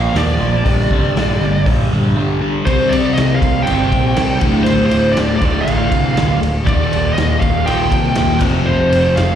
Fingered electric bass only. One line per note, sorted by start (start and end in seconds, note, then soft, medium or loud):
0.14 0.37 D#2 loud
0.39 0.62 A#1 loud
0.66 0.88 A#1 loud
0.91 1.13 C2 loud
1.16 1.38 A#1 medium
1.41 1.63 G1 medium
1.67 1.88 A#1 medium
1.91 2.13 A#1 medium
2.67 2.88 C2 loud
2.92 3.13 C2 medium
3.17 3.38 C2 medium
3.42 3.63 C2 loud
3.68 3.88 G1 loud
3.92 4.13 A#1 loud
4.18 4.38 C2 loud
4.42 4.63 D1 medium
4.68 4.89 D1 loud
4.92 5.13 D1 medium
5.18 5.39 D1 medium
5.42 5.63 D1 medium
5.67 5.88 A1 medium
5.92 6.13 C2 loud
6.17 6.38 D1 loud
6.41 6.67 D1 loud
6.67 6.88 D#1 loud
6.91 7.13 D#1 medium
7.16 7.38 D#1 medium
7.42 7.63 D#1 medium
7.67 7.88 A#1 medium
7.92 8.13 C2 loud
8.17 8.41 D#1 loud
8.41 8.63 F1 loud
8.68 8.89 F1 loud
8.93 9.14 F1 medium
9.18 9.35 F1 medium